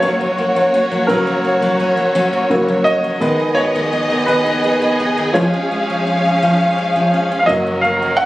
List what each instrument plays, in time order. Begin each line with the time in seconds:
Already playing: upright piano C#3 F#3 A#3 D#5, steel-string acoustic guitar A#3, string section A#3 F#4 C#5
0.00 steel-string acoustic guitar F#3 C#4, upright piano C#5
0.21 steel-string acoustic guitar F#3
0.38 steel-string acoustic guitar A#3
0.56 steel-string acoustic guitar F#3
0.74 steel-string acoustic guitar C#4
0.92 steel-string acoustic guitar F#3
1.07 upright piano C#3 F#3 A#3 A#4, steel-string acoustic guitar F#3 C#4
1.27 steel-string acoustic guitar F#3
1.44 steel-string acoustic guitar A#3
1.62 steel-string acoustic guitar F#3
1.80 steel-string acoustic guitar C#4
1.97 steel-string acoustic guitar F#3
2.15 steel-string acoustic guitar F#3 C#4
2.33 steel-string acoustic guitar F#3
2.50 upright piano C#3 F#3 A#3, steel-string acoustic guitar A#3
2.68 steel-string acoustic guitar F#3
2.84 steel-string acoustic guitar C#4, upright piano D#5
3.04 steel-string acoustic guitar F#3
3.20 upright piano D#3 G#3 B3, steel-string acoustic guitar D#3 D#4, string section B3 G#4 D#5
3.39 steel-string acoustic guitar D#3
3.55 steel-string acoustic guitar B3, upright piano C#5
3.76 steel-string acoustic guitar D#3
3.93 steel-string acoustic guitar D#4
4.10 steel-string acoustic guitar D#3
4.26 steel-string acoustic guitar D#3 D#4, upright piano B4
4.46 steel-string acoustic guitar D#3
4.64 steel-string acoustic guitar B3
4.82 steel-string acoustic guitar D#3
5.00 steel-string acoustic guitar D#4
5.17 steel-string acoustic guitar D#3
5.33 upright piano F3 G#3 C#4 C#5, steel-string acoustic guitar F3 C#4, string section C#4 F5
5.53 steel-string acoustic guitar F3
5.71 steel-string acoustic guitar G#3
5.90 steel-string acoustic guitar F3
6.07 steel-string acoustic guitar C#4
6.25 steel-string acoustic guitar F3
6.43 steel-string acoustic guitar F3 C#4
6.60 steel-string acoustic guitar F3
6.78 steel-string acoustic guitar G#3
6.96 steel-string acoustic guitar F3
7.14 steel-string acoustic guitar C#4
7.32 steel-string acoustic guitar F3
7.39 upright piano F5
7.46 upright bass F#1, upright piano F#3 A#3 C#4 D#5, steel-string acoustic guitar F#3 C#4, string section C#4 F#4 A#4
7.67 steel-string acoustic guitar F#3
7.81 steel-string acoustic guitar A#3, upright piano F5
8.02 steel-string acoustic guitar F#3
8.17 steel-string acoustic guitar C#4, upright piano F#5